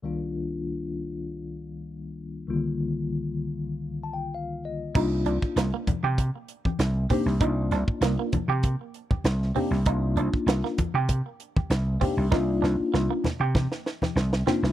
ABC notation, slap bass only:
X:1
M:4/4
L:1/16
Q:"Swing 16ths" 1/4=98
K:Cm
V:1 name="Slap bass" clef=bass
z16 | z16 | C,,2 C,, z C,, z2 C,2 z3 C,,2 z C,, | C,,2 C,, z C,, z2 C,2 z3 C,,2 z C,, |
C,,2 C,, z C,, z2 C,2 z3 C,,2 z C,, | C,,2 C,, z C,, z2 C,2 z3 C,,2 z C,, |]